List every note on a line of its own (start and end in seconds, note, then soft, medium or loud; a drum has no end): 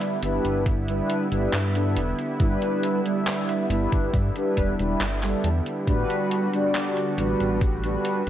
0.00 8.29 D3 medium
0.00 0.17 G3 medium
0.00 8.29 G3 medium
0.00 5.84 B3 medium
0.00 0.17 D4 medium
0.00 0.18 E4 medium
0.00 5.84 E4 medium
0.00 0.18 E5 medium
0.00 closed hi-hat soft
0.22 0.40 G1 medium
0.22 0.63 G3 medium
0.22 0.63 D4 medium
0.22 0.63 E4 medium
0.22 0.64 B4 medium
0.22 closed hi-hat medium
0.45 1.02 G1 medium
0.45 closed hi-hat soft
0.66 kick loud
0.66 closed hi-hat medium
0.88 1.26 G3 medium
0.88 1.26 D4 medium
0.88 1.27 E4 medium
0.88 1.27 B4 medium
0.88 closed hi-hat soft
1.10 closed hi-hat medium
1.31 1.48 G1 medium
1.31 1.56 G3 medium
1.31 1.57 D4 medium
1.31 1.57 E4 medium
1.31 1.57 B4 medium
1.31 closed hi-hat soft
1.53 1.98 G2 medium
1.53 clap loud
1.53 closed hi-hat medium
1.75 2.00 G3 medium
1.75 2.00 D4 medium
1.75 2.00 E4 medium
1.75 2.01 A4 medium
1.75 closed hi-hat soft
1.96 2.13 E1 loud
1.96 closed hi-hat medium
2.19 closed hi-hat soft
2.40 2.57 G1 loud
2.40 3.00 G3 medium
2.40 3.00 D4 medium
2.40 3.00 E4 medium
2.40 3.01 B4 loud
2.40 kick loud
2.40 closed hi-hat medium
2.62 closed hi-hat soft
2.83 closed hi-hat medium
3.05 3.65 G3 medium
3.05 3.65 D4 medium
3.05 3.65 E4 medium
3.05 3.66 E5 medium
3.05 closed hi-hat soft
3.27 clap loud
3.27 closed hi-hat medium
3.49 closed hi-hat soft
3.70 3.87 G1 medium
3.70 4.11 G3 medium
3.70 4.11 D4 medium
3.70 4.11 E4 medium
3.70 4.11 B4 medium
3.70 closed hi-hat medium
3.92 4.09 G1 medium
3.92 kick loud
3.92 closed hi-hat soft
4.14 4.31 G2 medium
4.14 kick loud
4.14 closed hi-hat medium
4.35 4.74 G3 medium
4.35 4.74 D4 medium
4.35 4.74 E4 medium
4.35 4.75 B4 medium
4.35 closed hi-hat soft
4.57 4.74 E1 medium
4.57 kick medium
4.57 closed hi-hat medium
4.79 4.96 E1 loud
4.79 5.04 G3 medium
4.79 5.04 D4 medium
4.79 5.04 E4 medium
4.79 5.05 B4 medium
4.79 closed hi-hat soft
5.00 5.34 G1 loud
5.00 clap loud
5.00 closed hi-hat medium
5.22 5.47 G3 medium
5.22 5.48 D4 medium
5.22 5.48 E4 medium
5.22 5.48 A4 medium
5.22 clap soft
5.22 closed hi-hat soft
5.44 5.61 E2 medium
5.44 closed hi-hat medium
5.66 closed hi-hat soft
5.87 6.05 A1 loud
5.87 6.48 G3 loud
5.87 8.29 B3 medium
5.87 6.48 D4 medium
5.87 8.29 F#4 medium
5.87 6.48 F#4 medium
5.87 6.48 B4 loud
5.87 kick loud
5.87 closed hi-hat medium
6.10 closed hi-hat soft
6.31 closed hi-hat medium
6.53 7.13 G3 medium
6.53 7.13 D4 medium
6.53 7.13 F#4 medium
6.53 7.13 D5 medium
6.53 closed hi-hat soft
6.75 clap loud
6.75 closed hi-hat medium
6.97 closed hi-hat soft
7.18 7.35 A1 medium
7.18 7.58 G3 medium
7.18 7.59 D4 medium
7.18 7.59 F#4 medium
7.18 7.59 B4 medium
7.18 closed hi-hat medium
7.40 7.97 A1 medium
7.40 closed hi-hat soft
7.61 kick loud
7.61 closed hi-hat medium
7.83 8.22 G3 medium
7.83 8.22 D4 medium
7.83 8.22 F#4 medium
7.83 8.22 B4 medium
7.83 closed hi-hat soft
8.05 closed hi-hat medium
8.26 8.29 G3 medium